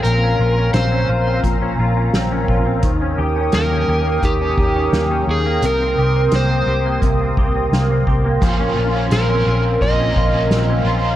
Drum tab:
HH |x-x-x-x-|x-x-x-x-|x-x-x-x-|x-x-x-x-|
SD |--o---o-|--o---o-|--o---o-|--o---o-|
BD |----o--o|o---oo--|----oo-o|o---oo--|